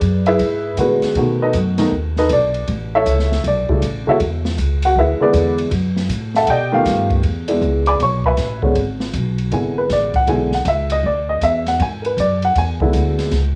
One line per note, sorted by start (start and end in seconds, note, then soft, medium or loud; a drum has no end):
0.00 0.38 F#2 medium
0.00 0.24 D4 medium
0.00 0.24 G#4 medium
0.00 0.24 B4 medium
0.00 0.23 D5 medium
0.00 kick soft
0.00 hi-hat pedal soft
0.00 ride medium
0.26 0.75 E4 medium
0.26 0.75 G#4 medium
0.26 0.75 B4 medium
0.26 0.74 E5 medium
0.26 ride soft
0.39 0.76 G#2 medium
0.39 kick soft
0.39 ride medium
0.77 1.01 A2 medium
0.77 1.16 D3 medium
0.77 1.16 G#3 medium
0.77 1.16 B3 medium
0.77 1.15 E4 soft
0.77 1.16 F#4 medium
0.77 1.38 G#4 medium
0.77 1.38 B4 medium
0.77 kick soft
0.77 hi-hat pedal medium
0.77 ride medium
1.02 muted upright bass stroke soft
1.02 snare soft
1.02 ride soft
1.15 1.52 B2 medium
1.15 1.74 D#3 medium
1.15 1.74 A3 medium
1.15 1.74 B3 medium
1.15 1.74 F#4 medium
1.15 kick soft
1.15 ride medium
1.42 1.54 D#4 medium
1.42 1.55 A4 medium
1.42 1.54 B4 medium
1.42 1.54 D#5 medium
1.53 1.91 F#2 medium
1.53 kick soft
1.53 hi-hat pedal medium
1.53 ride medium
1.78 1.90 D#3 medium
1.78 1.91 A3 medium
1.78 1.91 B3 medium
1.78 1.91 D#4 medium
1.78 snare medium
1.78 ride medium
1.91 2.28 D#2 medium
1.91 kick soft
2.17 2.30 D#4 medium
2.17 2.31 A4 medium
2.17 2.30 B4 medium
2.17 2.30 D#5 medium
2.17 snare soft
2.29 2.67 B1 medium
2.29 2.67 D4 medium
2.29 2.67 D5 medium
2.29 kick soft
2.29 hi-hat pedal soft
2.29 ride medium
2.54 ride soft
2.68 3.05 A1 medium
2.68 kick soft
2.68 ride medium
2.95 3.42 E4 medium
2.95 3.42 A4 medium
2.95 3.42 C#5 medium
2.95 3.42 E5 loud
3.06 3.43 C#2 medium
3.06 kick soft
3.06 hi-hat pedal medium
3.06 ride medium
3.19 snare soft
3.32 snare soft
3.44 3.67 B1 medium
3.44 4.05 D4 medium
3.44 4.04 D5 medium
3.44 kick soft
3.44 ride medium
3.69 3.81 C#3 medium
3.69 3.81 G3 medium
3.69 3.81 A3 medium
3.69 3.81 E4 medium
3.69 kick medium
3.81 4.05 A1 medium
3.81 kick soft
3.81 hi-hat pedal medium
3.81 ride medium
4.07 4.19 D3 medium
4.07 4.19 G#3 medium
4.07 4.19 B3 medium
4.07 4.16 E4 medium
4.07 4.19 F#4 medium
4.07 4.16 A4 medium
4.07 4.16 C#5 medium
4.07 4.16 E5 medium
4.07 muted upright bass stroke soft
4.20 4.57 E2 medium
4.20 kick soft
4.20 ride medium
4.45 snare medium
4.58 4.95 C#2 medium
4.58 kick soft
4.58 hi-hat pedal medium
4.58 ride medium
4.82 4.97 F#4 medium
4.82 4.97 F#5 loud
4.82 ride medium
4.96 5.19 D2 medium
4.96 5.20 E4 medium
4.96 5.21 G#4 medium
4.96 5.21 B4 medium
4.96 5.21 E5 medium
4.96 kick soft
5.19 5.69 D3 medium
5.19 5.69 G#3 medium
5.19 5.70 B3 medium
5.19 5.57 D4 medium
5.19 5.70 E4 medium
5.19 5.57 G#4 medium
5.19 5.57 B4 medium
5.19 5.57 D5 loud
5.19 muted upright bass stroke soft
5.33 5.70 E2 medium
5.33 kick soft
5.33 hi-hat pedal medium
5.33 ride medium
5.58 ride soft
5.71 6.08 F#2 medium
5.71 kick soft
5.71 ride medium
5.96 snare soft
6.09 6.46 A2 loud
6.09 kick soft
6.09 hi-hat pedal medium
6.09 ride medium
6.35 6.48 A4 medium
6.35 6.48 E5 medium
6.35 6.44 F#5 medium
6.35 6.48 A5 loud
6.35 snare soft
6.46 6.84 B2 medium
6.46 6.49 F#5 medium
6.46 kick soft
6.46 ride medium
6.50 6.72 G4 medium
6.50 6.73 D5 medium
6.50 6.73 D#5 medium
6.50 6.73 G5 loud
6.72 7.21 D#3 medium
6.72 7.21 A3 medium
6.72 7.21 B3 medium
6.72 7.09 F4 medium
6.72 7.22 G4 medium
6.72 7.09 F5 loud
6.85 7.22 G2 medium
6.85 kick soft
6.85 snare soft
6.85 hi-hat pedal medium
6.85 ride medium
7.10 kick medium
7.10 ride soft
7.23 7.60 E2 medium
7.23 kick soft
7.23 ride medium
7.48 7.97 G#3 medium
7.48 7.97 B3 medium
7.48 7.97 D4 medium
7.48 7.97 E4 medium
7.48 ride medium
7.61 7.98 C#2 medium
7.61 kick soft
7.61 hi-hat pedal soft
7.86 8.00 D5 medium
7.86 8.00 G#5 medium
7.86 8.00 B5 medium
7.86 8.00 D6 loud
7.86 ride soft
8.00 8.36 B1 medium
8.00 8.25 C#5 medium
8.00 8.25 C#6 medium
8.00 kick soft
8.00 ride medium
8.24 8.61 B4 medium
8.24 8.61 E5 medium
8.24 8.61 G#5 medium
8.24 8.61 B5 medium
8.24 kick soft
8.37 8.74 A1 medium
8.37 kick soft
8.37 snare soft
8.37 hi-hat pedal soft
8.37 ride medium
8.62 8.74 D3 medium
8.62 8.74 G#3 medium
8.62 8.75 B3 medium
8.62 8.75 C#4 medium
8.62 kick soft
8.75 9.12 G#1 medium
8.75 kick soft
8.75 ride medium
9.00 snare medium
9.13 9.50 B1 medium
9.13 kick soft
9.13 hi-hat pedal medium
9.13 ride medium
9.38 ride soft
9.51 9.88 G#1 medium
9.51 10.10 D3 soft
9.51 10.10 G#3 soft
9.51 10.10 B3 soft
9.51 10.10 E4 medium
9.51 9.77 G#5 medium
9.51 kick soft
9.51 ride medium
9.78 9.90 B4 medium
9.89 10.26 A1 medium
9.89 10.15 D5 medium
9.89 kick soft
9.89 snare soft
9.89 hi-hat pedal medium
9.89 ride medium
10.14 10.28 F#5 medium
10.14 kick medium
10.14 ride soft
10.27 10.64 B1 medium
10.27 10.50 D3 medium
10.27 10.50 G#3 medium
10.27 10.50 B3 medium
10.27 10.50 E4 medium
10.27 10.53 G#5 medium
10.27 kick soft
10.27 ride medium
10.52 10.66 F#5 medium
10.52 snare soft
10.65 11.02 C#2 loud
10.65 10.91 E5 medium
10.65 kick soft
10.65 hi-hat pedal medium
10.65 ride medium
10.90 11.04 D#5 medium
10.90 ride medium
11.03 11.40 D2 medium
11.03 11.29 D5 medium
11.03 kick soft
11.29 11.42 D#5 medium
11.41 11.78 E2 medium
11.41 11.67 E5 medium
11.41 kick soft
11.41 hi-hat pedal soft
11.41 ride medium
11.66 11.80 F#5 medium
11.66 snare soft
11.66 ride soft
11.79 12.16 G#2 medium
11.79 12.05 G#5 medium
11.79 kick soft
11.79 ride medium
12.02 12.04 A#4 soft
12.02 ride soft
12.06 12.18 B4 medium
12.17 12.54 F#2 medium
12.17 12.43 D5 medium
12.17 kick soft
12.17 hi-hat pedal soft
12.17 ride medium
12.42 12.56 F#5 medium
12.42 ride soft
12.55 12.92 E2 medium
12.55 12.72 G#5 loud
12.55 kick soft
12.55 ride medium
12.80 13.30 D3 medium
12.80 13.30 G#3 medium
12.80 13.30 B3 medium
12.80 13.30 E4 medium
12.80 kick medium
12.93 13.31 D2 medium
12.93 kick soft
12.93 hi-hat pedal medium
12.93 ride medium
13.19 snare soft
13.19 ride soft
13.31 13.55 C#2 medium
13.31 kick soft
13.31 snare soft
13.31 ride medium